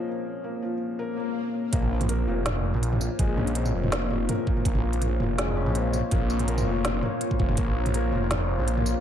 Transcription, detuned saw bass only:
0, 0, Header, 1, 2, 480
1, 0, Start_track
1, 0, Key_signature, -5, "minor"
1, 0, Tempo, 365854
1, 344, Time_signature, 4, 2, 24, 8
1, 11812, End_track
2, 0, Start_track
2, 0, Title_t, "Detuned saw bass"
2, 0, Program_c, 0, 39
2, 2268, Note_on_c, 0, 34, 100
2, 2972, Note_off_c, 0, 34, 0
2, 2986, Note_on_c, 0, 29, 102
2, 3577, Note_off_c, 0, 29, 0
2, 3596, Note_on_c, 0, 34, 106
2, 4058, Note_off_c, 0, 34, 0
2, 4187, Note_on_c, 0, 34, 102
2, 4891, Note_off_c, 0, 34, 0
2, 4910, Note_on_c, 0, 29, 100
2, 5373, Note_off_c, 0, 29, 0
2, 5384, Note_on_c, 0, 29, 85
2, 5606, Note_off_c, 0, 29, 0
2, 6104, Note_on_c, 0, 34, 104
2, 6810, Note_off_c, 0, 34, 0
2, 6825, Note_on_c, 0, 29, 103
2, 7416, Note_off_c, 0, 29, 0
2, 7426, Note_on_c, 0, 34, 109
2, 7893, Note_off_c, 0, 34, 0
2, 8025, Note_on_c, 0, 34, 102
2, 8730, Note_off_c, 0, 34, 0
2, 8742, Note_on_c, 0, 29, 99
2, 9209, Note_off_c, 0, 29, 0
2, 9705, Note_on_c, 0, 29, 95
2, 9927, Note_off_c, 0, 29, 0
2, 9943, Note_on_c, 0, 34, 104
2, 10649, Note_off_c, 0, 34, 0
2, 10661, Note_on_c, 0, 29, 101
2, 11254, Note_off_c, 0, 29, 0
2, 11271, Note_on_c, 0, 34, 104
2, 11735, Note_off_c, 0, 34, 0
2, 11812, End_track
0, 0, End_of_file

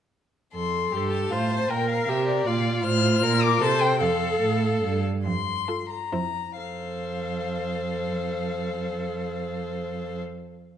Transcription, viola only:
0, 0, Header, 1, 2, 480
1, 0, Start_track
1, 0, Key_signature, -1, "major"
1, 0, Tempo, 386100
1, 671, Time_signature, 3, 2, 24, 8
1, 4499, Tempo, 404313
1, 5939, Tempo, 425532
1, 6899, Tempo, 444115
1, 7379, Tempo, 472069
1, 12107, End_track
2, 0, Start_track
2, 0, Title_t, "Viola"
2, 0, Program_c, 0, 41
2, 1159, Note_on_c, 0, 69, 42
2, 1642, Note_on_c, 0, 72, 42
2, 1661, Note_off_c, 0, 69, 0
2, 2114, Note_on_c, 0, 70, 49
2, 2133, Note_off_c, 0, 72, 0
2, 2588, Note_on_c, 0, 67, 51
2, 2607, Note_off_c, 0, 70, 0
2, 3070, Note_on_c, 0, 65, 54
2, 3089, Note_off_c, 0, 67, 0
2, 4488, Note_on_c, 0, 72, 68
2, 4506, Note_off_c, 0, 65, 0
2, 4957, Note_off_c, 0, 72, 0
2, 4964, Note_on_c, 0, 69, 58
2, 6152, Note_off_c, 0, 69, 0
2, 6899, Note_on_c, 0, 65, 39
2, 7253, Note_off_c, 0, 65, 0
2, 7378, Note_on_c, 0, 64, 40
2, 7736, Note_off_c, 0, 64, 0
2, 7853, Note_on_c, 0, 69, 29
2, 11504, Note_off_c, 0, 69, 0
2, 12107, End_track
0, 0, End_of_file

